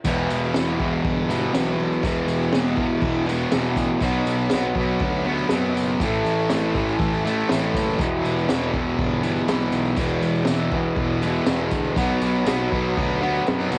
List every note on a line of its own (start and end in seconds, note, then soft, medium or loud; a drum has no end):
0.05 0.26 E1 loud
0.05 0.54 E2 loud
0.05 0.55 B2 loud
0.05 0.58 E3 loud
0.05 kick loud
0.05 crash loud
0.05 tambourine medium
0.05 crash medium
0.30 0.52 E1 loud
0.30 tambourine medium
0.30 crash medium
0.44 tambourine soft
0.54 0.76 E1 medium
0.54 1.53 E2 medium
0.54 0.82 B2 medium
0.54 0.80 E3 medium
0.54 snare loud
0.54 tambourine loud
0.54 crash medium
0.68 tambourine soft
0.80 1.01 E1 loud
0.80 1.31 B2 medium
0.80 1.28 E3 medium
0.80 kick medium
0.80 crash medium
1.04 1.47 G1 loud
1.04 kick loud
1.04 crash medium
1.29 1.54 B2 medium
1.29 1.55 E3 medium
1.29 tambourine medium
1.29 crash medium
1.54 1.75 B1 medium
1.54 2.03 E2 medium
1.54 2.05 B2 loud
1.54 2.06 E3 loud
1.54 snare loud
1.54 tambourine medium
1.54 crash medium
1.68 tambourine soft
1.78 1.99 B1 medium
1.78 crash medium
1.93 tambourine soft
2.03 2.25 E1 medium
2.03 2.52 E2 loud
2.03 2.54 B2 loud
2.03 kick loud
2.03 tambourine medium
2.03 crash medium
2.07 2.56 E3 loud
2.27 2.48 E1 medium
2.27 tambourine medium
2.27 crash medium
2.42 tambourine soft
2.53 2.74 E1 medium
2.53 3.03 E2 medium
2.53 2.80 B2 medium
2.53 snare loud
2.53 tambourine medium
2.53 crash medium
2.57 2.77 E3 medium
2.68 tambourine soft
2.77 2.99 E1 medium
2.77 3.26 E3 medium
2.77 kick medium
2.77 crash medium
2.81 3.29 B2 medium
3.02 3.44 E1 loud
3.02 kick loud
3.02 crash medium
3.26 3.55 E3 medium
3.26 tambourine medium
3.26 crash medium
3.30 3.53 B2 medium
3.41 tambourine soft
3.52 3.74 E1 medium
3.52 4.01 E2 loud
3.52 4.01 B2 medium
3.52 snare loud
3.52 tambourine medium
3.52 crash medium
3.56 4.02 E3 loud
3.65 tambourine soft
3.76 3.98 A1 medium
3.76 kick medium
3.76 tambourine medium
3.76 crash medium
4.00 4.23 B1 loud
4.00 4.51 B2 medium
4.00 4.53 F#3 medium
4.00 kick loud
4.00 tambourine medium
4.00 crash medium
4.05 4.54 B3 loud
4.26 4.48 B1 medium
4.26 tambourine medium
4.26 crash medium
4.39 tambourine soft
4.50 4.73 B1 loud
4.50 5.02 B2 medium
4.50 snare loud
4.50 tambourine loud
4.50 crash medium
4.54 4.78 F#3 medium
4.54 4.75 B3 medium
4.63 tambourine soft
4.75 4.97 B1 medium
4.75 5.25 B3 medium
4.75 kick medium
4.75 crash medium
4.79 5.28 F#3 medium
5.00 5.43 D2 medium
5.00 kick loud
5.00 crash medium
5.25 5.54 B3 medium
5.25 crash medium
5.30 5.52 F#3 medium
5.38 tambourine soft
5.49 5.72 F#2 medium
5.49 6.00 B2 medium
5.49 snare loud
5.49 tambourine loud
5.49 crash medium
5.54 6.01 F#3 loud
5.54 6.01 B3 loud
5.64 tambourine soft
5.74 5.96 F#1 medium
5.74 tambourine medium
5.74 crash medium
6.00 6.22 A1 loud
6.00 6.50 A2 loud
6.00 6.52 E3 loud
6.00 kick loud
6.00 tambourine medium
6.00 crash medium
6.04 6.53 A3 loud
6.14 tambourine soft
6.25 6.46 A1 medium
6.25 tambourine medium
6.25 crash medium
6.39 tambourine soft
6.50 6.72 A1 medium
6.50 7.00 A2 medium
6.50 6.78 E3 medium
6.50 snare loud
6.50 tambourine loud
6.50 crash medium
6.54 6.75 A3 medium
6.64 tambourine soft
6.75 6.96 A1 medium
6.75 7.28 E3 medium
6.75 7.24 A3 medium
6.75 kick medium
6.75 tambourine soft
6.75 crash medium
6.88 tambourine soft
6.99 7.42 A1 loud
6.99 kick loud
6.99 tambourine soft
6.99 crash medium
7.14 tambourine soft
7.24 7.51 A3 medium
7.24 tambourine medium
7.24 crash medium
7.28 7.51 E3 medium
7.41 tambourine soft
7.49 7.71 A1 loud
7.49 7.98 A2 medium
7.49 8.02 E3 loud
7.49 7.99 A3 loud
7.49 snare loud
7.49 tambourine loud
7.49 crash medium
7.64 tambourine soft
7.74 7.95 F#1 medium
7.74 kick medium
7.74 tambourine medium
7.74 crash medium
7.90 tambourine soft
7.99 8.21 E1 loud
7.99 8.49 E2 loud
7.99 8.51 B2 loud
7.99 8.53 E3 loud
7.99 kick loud
7.99 tambourine medium
7.99 crash medium
8.25 8.45 E1 loud
8.25 tambourine medium
8.25 crash medium
8.39 tambourine soft
8.49 8.71 E1 loud
8.49 9.48 E2 medium
8.49 8.76 B2 medium
8.49 snare loud
8.49 tambourine loud
8.49 crash medium
8.54 8.73 E3 medium
8.62 tambourine soft
8.74 8.95 E1 medium
8.74 9.26 B2 medium
8.74 9.22 E3 medium
8.74 kick medium
8.74 crash medium
8.99 9.41 G1 loud
8.99 kick loud
8.99 crash medium
9.23 9.50 E3 medium
9.23 tambourine medium
9.23 crash medium
9.27 9.49 B2 medium
9.36 tambourine soft
9.48 9.69 B1 medium
9.48 9.97 E2 medium
9.48 9.98 B2 medium
9.48 10.00 E3 loud
9.48 snare loud
9.48 tambourine medium
9.48 crash medium
9.60 tambourine soft
9.72 9.94 B1 medium
9.72 tambourine medium
9.72 crash medium
9.85 tambourine soft
9.96 10.18 E1 medium
9.96 10.46 E2 medium
9.96 10.48 B2 loud
9.96 kick loud
9.96 tambourine medium
9.96 crash medium
10.01 10.49 E3 loud
10.21 10.43 E1 loud
10.21 tambourine medium
10.21 crash medium
10.35 tambourine soft
10.45 10.68 E1 loud
10.45 10.97 E2 medium
10.45 snare loud
10.45 tambourine loud
10.45 crash medium
10.49 10.75 B2 medium
10.49 10.72 E3 medium
10.60 tambourine soft
10.71 10.93 E1 medium
10.71 11.21 E3 medium
10.71 kick medium
10.71 crash medium
10.76 11.24 B2 medium
10.96 11.39 E1 loud
10.96 kick loud
10.96 crash medium
11.21 11.49 E3 medium
11.21 tambourine medium
11.21 crash medium
11.26 11.47 B2 medium
11.35 tambourine soft
11.46 11.68 E1 medium
11.46 11.95 E2 loud
11.46 11.96 B2 loud
11.46 11.97 E3 loud
11.46 snare loud
11.46 tambourine loud
11.46 crash medium
11.59 tambourine soft
11.71 11.93 D2 medium
11.71 kick medium
11.71 tambourine medium
11.71 crash medium
11.85 tambourine soft
11.96 12.18 B1 loud
11.96 12.45 B2 loud
11.96 12.47 F#3 loud
11.96 kick loud
11.96 tambourine medium
11.96 crash medium
12.00 12.49 B3 loud
12.21 12.43 B1 loud
12.21 tambourine medium
12.21 crash medium
12.35 tambourine soft
12.46 12.68 B1 loud
12.46 12.96 B2 medium
12.46 12.73 F#3 medium
12.46 12.71 B3 loud
12.46 snare loud
12.46 tambourine loud
12.46 crash medium
12.59 tambourine soft
12.71 12.93 B1 medium
12.71 13.23 F#3 medium
12.71 13.21 B3 medium
12.71 kick medium
12.71 crash medium
12.97 13.39 D2 loud
12.97 kick loud
12.97 crash medium
13.21 13.48 F#3 medium
13.21 13.49 B3 medium
13.21 crash medium
13.35 tambourine soft
13.46 13.69 F#2 medium
13.46 13.78 B2 loud
13.46 13.78 F#3 loud
13.46 13.78 B3 loud
13.46 snare loud
13.46 tambourine medium
13.46 crash medium
13.61 tambourine soft
13.72 13.78 D#2 medium
13.72 tambourine medium
13.72 crash medium